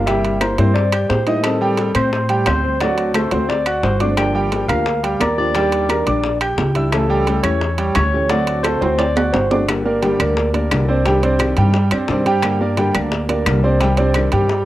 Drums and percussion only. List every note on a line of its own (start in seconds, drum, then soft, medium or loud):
0.07 high bongo medium
0.07 high timbale medium
0.24 high bongo soft
0.24 high timbale medium
0.41 high bongo medium
0.41 high timbale medium
0.41 claves medium
0.58 high bongo soft
0.58 high timbale medium
0.76 high bongo medium
0.92 high bongo soft
0.92 high timbale loud
0.92 claves medium
1.10 high bongo medium
1.10 low bongo medium
1.10 low timbale medium
1.27 high timbale medium
1.44 high bongo medium
1.44 high timbale medium
1.44 claves medium
1.77 high bongo medium
1.77 high timbale medium
1.95 high timbale medium
1.95 claves medium
2.13 high bongo medium
2.29 high timbale medium
2.46 high bongo medium
2.46 low bongo medium
2.46 high timbale medium
2.46 low timbale medium
2.46 claves medium
2.80 high bongo medium
2.80 high timbale medium
2.98 high bongo soft
2.98 high timbale medium
3.14 high bongo medium
3.14 high timbale medium
3.14 claves medium
3.31 high bongo soft
3.31 high timbale medium
3.50 high bongo medium
3.66 high bongo soft
3.66 high timbale medium
3.66 claves medium
3.83 high bongo medium
3.83 low bongo medium
4.00 high timbale medium
4.17 high bongo medium
4.17 high timbale medium
4.17 claves medium
4.52 high bongo medium
4.52 high timbale medium
4.69 high timbale medium
4.69 claves medium
4.86 high bongo medium
5.04 high timbale medium
5.21 high bongo medium
5.21 low bongo medium
5.21 high timbale medium
5.21 low timbale medium
5.21 claves medium
5.55 high bongo medium
5.55 high timbale medium
5.72 high bongo soft
5.72 high timbale medium
5.89 high bongo medium
5.89 high timbale medium
5.89 claves medium
6.06 high bongo soft
6.06 high timbale medium
6.24 high bongo medium
6.41 high bongo soft
6.41 high timbale loud
6.41 claves medium
6.58 high bongo medium
6.58 low bongo medium
6.58 low timbale medium
6.75 high timbale medium
6.92 high bongo medium
6.92 high timbale medium
6.92 claves medium
7.27 high bongo medium
7.27 high timbale medium
7.44 high timbale medium
7.44 claves medium
7.61 high bongo medium
7.78 high timbale medium
7.95 high bongo medium
7.95 low bongo medium
7.95 high timbale medium
7.95 claves medium
8.29 high bongo medium
8.29 high timbale medium
8.47 high bongo soft
8.47 high timbale medium
8.64 high bongo medium
8.64 high timbale medium
8.64 claves medium
8.82 high bongo soft
8.82 high timbale medium
8.99 high bongo medium
8.99 high timbale medium
9.16 high bongo soft
9.16 low timbale medium
9.16 claves medium
9.34 high bongo medium
9.34 low bongo medium
9.34 low timbale medium
9.51 low timbale medium
9.68 high bongo medium
9.68 high timbale loud
9.68 claves medium
10.03 high bongo medium
10.03 high timbale medium
10.20 high timbale loud
10.20 claves medium
10.37 high bongo medium
10.54 high timbale medium
10.71 high bongo medium
10.71 low bongo medium
10.71 high timbale medium
10.71 claves medium
11.05 high bongo medium
11.05 high timbale medium
11.22 high bongo soft
11.22 high timbale medium
11.39 high bongo medium
11.39 high timbale medium
11.39 claves medium
11.57 high bongo soft
11.57 high timbale medium
11.74 high bongo medium
11.91 high bongo soft
11.91 high timbale medium
11.91 claves medium
12.08 high bongo medium
12.08 low bongo medium
12.26 high timbale medium
12.42 high bongo medium
12.42 high timbale medium
12.42 claves medium
12.77 high bongo medium
12.77 high timbale medium
12.95 high timbale loud
12.95 claves medium
13.12 high bongo medium
13.29 high timbale medium
13.46 high bongo medium
13.46 low bongo medium
13.46 high timbale medium
13.46 claves medium
13.81 high bongo medium
13.81 high timbale medium
13.97 high bongo soft
13.97 high timbale medium
14.14 high bongo medium
14.14 high timbale medium
14.14 claves medium
14.32 high bongo soft
14.32 high timbale medium
14.49 high bongo medium